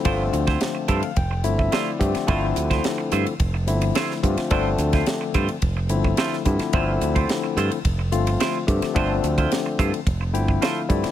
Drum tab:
RD |x-xxx-xxx-x-x-xx|x-xxx-xxx-xxx-xx|x-xxx-xxx-x-x-xx|x-xxx-xxx-xxx-xx|
HH |--p---p---p---p-|--p---p---p---p-|--p---p---p---p-|--p---p---p---p-|
SD |---oo-------o--o|---oo-------oo-o|---oo-------oo-o|----o-------o--o|
BD |o--o--o-o--o--o-|o--o----o-----o-|o--o--o-o--o--o-|o--o----o-----o-|

RD |x-xxx-xxx-x-x-xx|
HH |--p---p---p---p-|
SD |----o-------o--o|
BD |o--o--o-o--o--o-|